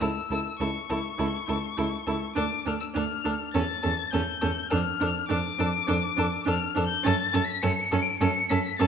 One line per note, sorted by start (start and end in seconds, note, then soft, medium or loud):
0.00 0.09 C#2 medium
0.00 0.08 E4 medium
0.00 0.09 A4 medium
0.00 0.58 E6 loud
0.30 0.39 C#2 medium
0.30 0.38 E4 medium
0.30 0.40 A4 medium
0.59 0.68 C#2 medium
0.59 0.68 E4 medium
0.59 0.69 A4 medium
0.59 2.33 C#6 medium
0.90 0.99 C#2 medium
0.90 0.98 E4 medium
0.90 0.98 A4 medium
1.18 1.27 C#2 medium
1.18 1.26 E4 medium
1.18 1.27 A4 medium
1.47 1.57 C#2 medium
1.47 1.55 E4 medium
1.47 1.57 A4 medium
1.77 1.87 C#2 medium
1.77 1.85 E4 medium
1.77 1.86 A4 medium
2.07 2.16 C#2 medium
2.07 2.15 E4 medium
2.07 2.15 A4 medium
2.35 2.45 D2 medium
2.35 2.43 D4 medium
2.35 2.44 A4 medium
2.35 2.65 D6 medium
2.65 2.75 D2 medium
2.65 2.73 D4 medium
2.65 2.75 A4 medium
2.65 2.72 F6 medium
2.80 2.86 E6 medium
2.94 3.04 D2 medium
2.94 3.02 D4 medium
2.94 3.03 A4 medium
2.94 3.53 F6 medium
3.24 3.34 D2 medium
3.24 3.32 D4 medium
3.24 3.33 A4 medium
3.54 3.63 E2 medium
3.54 3.62 C#4 medium
3.54 3.62 A4 medium
3.54 4.12 A6 loud
3.83 3.93 E2 medium
3.83 3.91 C#4 medium
3.83 3.91 A4 medium
4.11 4.22 E2 medium
4.11 4.21 C#4 medium
4.11 4.21 A4 medium
4.11 4.70 G6 loud
4.42 4.51 E2 medium
4.42 4.50 C#4 medium
4.42 4.50 A4 medium
4.70 4.80 F2 medium
4.70 4.79 D4 medium
4.70 4.79 A4 medium
4.70 5.28 F6 loud
5.00 5.09 F2 medium
5.00 5.08 D4 medium
5.00 5.09 A4 medium
5.29 5.38 F2 medium
5.29 5.37 D4 medium
5.29 5.38 A4 medium
5.29 6.44 D6 loud
5.59 5.67 F2 medium
5.59 5.67 D4 medium
5.59 5.68 A4 medium
5.87 5.97 F2 medium
5.87 5.95 D4 medium
5.87 5.97 A4 medium
6.17 6.26 F2 medium
6.17 6.25 D4 medium
6.17 6.26 A4 medium
6.45 6.55 F2 medium
6.45 6.53 D4 medium
6.45 6.55 A4 medium
6.45 6.85 F6 loud
6.75 6.84 F2 medium
6.75 6.83 D4 medium
6.75 6.85 A4 medium
6.87 7.05 G6 loud
7.03 7.14 F#2 medium
7.03 7.11 C#4 medium
7.03 7.14 A4 medium
7.03 7.46 A6 loud
7.33 7.42 F#2 medium
7.33 7.41 C#4 medium
7.33 7.42 A4 medium
7.45 7.63 B6 loud
7.62 7.71 F#2 medium
7.62 7.71 C#4 medium
7.62 7.71 A4 medium
7.62 8.03 C#7 loud
7.92 8.00 F#2 medium
7.92 8.00 C#4 medium
7.92 8.00 A4 medium
8.02 8.19 D7 loud
8.20 8.29 F#2 medium
8.20 8.29 C#4 medium
8.20 8.29 A4 medium
8.20 8.51 C#7 loud
8.50 8.59 F#2 medium
8.50 8.58 C#4 medium
8.50 8.59 A4 medium
8.50 8.79 B6 loud
8.79 8.87 F#2 medium
8.79 8.87 C#4 medium
8.79 8.87 A4 medium
8.79 8.87 A6 loud